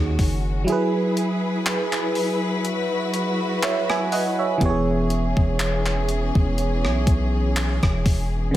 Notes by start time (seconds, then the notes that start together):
Already playing: D#2 D#3 C#4 D#4 F#4 G#4
0.19 F#1, kick, open hi-hat
0.64 F#3 E4 G#4 B4, closed hi-hat
0.69 G#4 B4
1.17 closed hi-hat
1.66 clap, closed hi-hat
1.93 clap
2.15 open hi-hat
2.64 F#4, closed hi-hat
3.14 closed hi-hat
3.63 C#5 E5, clap, closed hi-hat
3.90 E5 G#5, cross-stick
4.12 D#5 F#5, open hi-hat
4.39 C#5 E5
4.58 E1 E3 B3 C#4 G#4, kick, closed hi-hat
4.63 G4 C#5
4.69 G#4
5.10 closed hi-hat
5.37 E1, kick
5.59 clap, closed hi-hat
5.86 clap
6.09 closed hi-hat
6.35 E1, kick
6.58 closed hi-hat
6.85 B1, cross-stick
7.07 B1, kick, closed hi-hat
7.56 clap, closed hi-hat
7.83 E1, kick, cross-stick
8.06 kick, open hi-hat
8.51 C#3